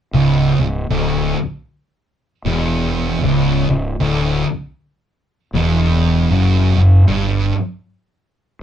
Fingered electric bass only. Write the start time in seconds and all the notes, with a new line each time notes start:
0.13 C#1
0.58 C#1
0.90 D1
2.45 E1
3.22 C#1
3.69 C#1
4.00 D1
5.53 E1
6.31 F#1
6.76 F#1
7.09 G1